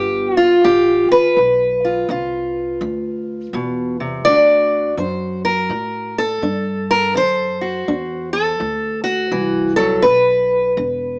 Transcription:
0.00 0.63 G1 medium
0.00 0.60 D3 medium
0.00 1.34 B3 medium
0.00 0.36 F4 medium
0.00 0.39 G4 loud
0.37 0.39 F4 medium
0.37 0.63 F4 loud
0.64 1.07 A1 medium
0.64 1.32 D3 medium
0.64 1.10 G4 medium
1.10 4.00 B4 loud
1.10 muted upright bass stroke soft
1.37 2.07 B1 medium
1.37 2.04 G2 medium
1.85 2.10 F4 soft
2.09 2.79 C2 medium
2.09 2.76 D3 medium
2.09 4.23 F4 soft
2.81 3.51 D2 medium
2.81 3.48 D3 medium
3.53 4.23 E2 medium
3.53 4.00 B2 medium
4.00 4.26 C3 medium
4.25 4.96 D2 medium
4.25 4.93 D3 medium
4.25 4.98 D4 soft
4.25 6.17 F#4 soft
4.25 4.97 D5 loud
4.97 5.68 F#2 medium
4.97 5.65 D4 medium
4.97 5.44 C5 soft
5.45 6.16 A#4 medium
5.70 6.40 A2 medium
5.70 6.37 A2 medium
6.18 7.61 A4 medium
6.42 7.12 G2 medium
6.42 7.10 D4 medium
6.91 7.16 A#4 loud
7.15 7.85 F#2 medium
7.15 7.82 D3 medium
7.15 8.61 C5 loud
7.61 8.33 F#4 soft
7.88 8.58 E2 medium
7.88 8.55 D4 medium
8.33 9.03 A4 medium
8.60 9.30 D2 medium
8.60 9.27 A2 medium
9.04 9.76 F#4 medium
9.31 10.02 C2 medium
9.31 9.78 E3 medium
9.76 10.05 F#3 medium
9.76 10.04 A4 loud
10.02 10.75 B1 medium
10.02 10.72 G2 medium
10.02 11.19 B4 loud
10.77 11.19 E1 medium
10.77 11.19 D3 medium

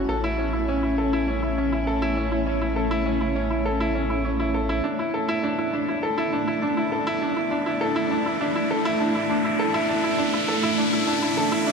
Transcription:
0.00 0.11 C#4 medium
0.00 4.80 C#4 medium
0.00 4.80 E4 medium
0.00 0.11 F#4 medium
0.00 0.09 A4 medium
0.00 4.80 C#5 medium
0.08 4.81 A1 medium
0.08 4.80 A3 medium
0.08 0.17 A4 medium
0.24 0.38 E4 medium
0.38 0.47 C#4 medium
0.53 0.62 E4 medium
0.68 0.82 C#4 medium
0.83 0.91 E4 medium
0.98 1.06 A4 medium
1.13 1.27 E4 medium
1.28 1.36 C#4 medium
1.42 1.51 E4 medium
1.58 1.72 C#4 medium
1.72 1.81 E4 medium
1.87 1.95 A4 medium
2.02 2.16 E4 medium
2.17 2.25 C#4 medium
2.32 2.40 E4 medium
2.46 2.60 C#4 medium
2.61 2.70 E4 medium
2.76 2.84 A4 medium
2.91 3.05 E4 medium
3.06 3.14 C#4 medium
3.21 3.29 E4 medium
3.36 3.50 C#4 medium
3.50 3.59 E4 medium
3.66 3.74 A4 medium
3.80 3.94 E4 medium
3.95 4.03 C#4 medium
4.10 4.18 E4 medium
4.25 4.39 C#4 medium
4.40 4.48 E4 medium
4.54 4.63 A4 medium
4.69 4.83 E4 medium
4.84 11.72 D2 medium
4.84 11.72 A3 medium
4.84 11.72 D4 medium
4.84 4.98 D4 medium
4.84 11.72 E4 medium
4.84 9.55 D5 medium
4.84 riser medium
4.99 5.07 E4 medium
5.14 5.22 A4 medium
5.28 5.43 E4 medium
5.43 5.52 D4 medium
5.58 5.67 E4 medium
5.73 5.87 D4 medium
5.88 5.97 E4 medium
6.03 6.11 A4 medium
6.18 6.32 E4 medium
6.33 6.41 D4 medium
6.47 6.56 E4 medium
6.62 6.76 D4 medium
6.77 6.85 E4 medium
6.92 7.00 A4 medium
7.07 7.21 E4 medium
7.22 7.30 D4 medium
7.36 7.45 E4 medium
7.51 7.65 D4 medium
7.66 7.74 E4 medium
7.81 7.89 A4 medium
7.96 8.10 E4 medium
8.11 8.19 D4 medium
8.26 8.34 E4 medium
8.41 8.55 D4 medium
8.56 8.64 E4 medium
8.71 8.79 A4 medium
8.85 8.99 E4 loud
9.00 9.08 D4 medium
9.15 9.23 E4 medium
9.30 9.44 D4 medium
9.45 9.53 E4 medium
9.59 9.68 A4 medium
9.59 11.72 E5 medium
9.74 9.88 E4 loud
9.89 9.97 D4 medium
10.04 10.12 E4 medium
10.18 10.33 D4 medium
10.34 10.42 E4 medium
10.48 10.57 A4 medium
10.63 10.77 E4 medium
10.78 10.86 D4 medium
10.93 11.01 E4 medium
11.07 11.22 D4 medium
11.22 11.31 E4 medium
11.37 11.46 A4 medium
11.52 11.66 E4 medium
11.67 11.72 D4 medium

